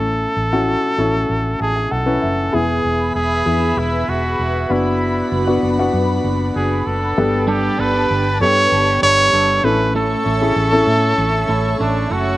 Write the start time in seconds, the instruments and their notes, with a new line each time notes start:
Already playing: fingered electric bass A1, upright piano A2 C#4 E4 A4, trumpet A4
0.37 fingered electric bass A1
0.52 upright piano C#4 E4 F#4
0.98 fingered electric bass A1, upright piano C#4 E4 A4
1.29 fingered electric bass A1
1.60 fingered electric bass A1, trumpet G#4, upright piano A5
1.76 upright piano G#5
1.91 fingered electric bass B1, trumpet A4, upright piano F#5
2.06 upright piano C#4 E4 B4
2.21 fingered electric bass F#1, upright piano E5
2.52 fingered electric bass E1, upright piano E3 B3 E4 G#4, analog synth pad G#4 B4 E5 B5, trumpet G#4
2.84 fingered electric bass E1
3.15 fingered electric bass E1, trumpet G#4
3.45 fingered electric bass E2, upright piano B3 E4 G#4
3.77 fingered electric bass E1, trumpet E4
4.08 fingered electric bass E1, trumpet F#4
4.39 fingered electric bass E1
4.69 fingered electric bass F#1, upright piano B3 D4 F#4, analog synth pad D4 F#4 B5, trumpet E4
5.32 fingered electric bass F#1
5.47 upright piano B3 D4 F#4
5.63 fingered electric bass F#1
5.79 upright piano B3 D4 F#4
5.93 fingered electric bass F#2
6.24 fingered electric bass F#1
6.56 fingered electric bass F#1, trumpet G#4
6.86 fingered electric bass F#1, trumpet A4
7.17 fingered electric bass G1, upright piano G2 B3 G4 A4, analog synth pad G4 B4 A5
7.47 clean electric guitar G3 B3 D4 A4, trumpet G4
7.78 fingered electric bass G1, clean electric guitar G3 B3 D4 A4, trumpet B4
7.94 clean electric guitar B3 D4 A4
8.10 fingered electric bass G1
8.41 fingered electric bass G2, upright piano B3 G4 A4, trumpet C#5
8.72 fingered electric bass G1
9.02 fingered electric bass G1, clean electric guitar G3 B3 D4 A4, trumpet C#5
9.32 fingered electric bass G1, clean electric guitar G3 B3 D4 A4
9.63 fingered electric bass A1, upright piano A2 C#4 E4 A4, clean electric guitar A3 C#4 E4 A4, analog synth pad A4 C#5 E5 C#6, trumpet B4
9.95 clean electric guitar A2 A3 C#4 E4 A4, trumpet A4
10.25 fingered electric bass A1, clean electric guitar A3 C#4 E4 A4
10.41 upright piano C#4 E4 G#4, clean electric guitar C#4 E4 A4
10.56 fingered electric bass A1
10.72 upright piano C#4 E4 A4
10.87 fingered electric bass A2
11.18 fingered electric bass A1
11.48 fingered electric bass A1, clean electric guitar A3 C#4 E4 A4
11.79 fingered electric bass A1, clean electric guitar A3 C#4 E4 A4, trumpet D4
12.10 fingered electric bass F#1, clean electric guitar A3 C#4 E4 A4, trumpet F#4